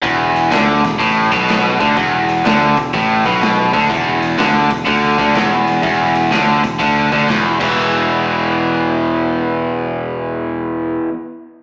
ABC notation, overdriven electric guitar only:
X:1
M:4/4
L:1/8
Q:"Swing" 1/4=124
K:Clyd
V:1 name="Overdriven electric guitar" clef=bass
E,,2 D, E,, A,, B,,2 D, | E,,2 D, E,, A,, B,,2 D, | E,,2 D, E,, D, D, E,,2 | E,,2 D, E,, D, D, E,, [E,,B,,E,]- |
[E,,B,,E,]8- | [E,,B,,E,]8 |]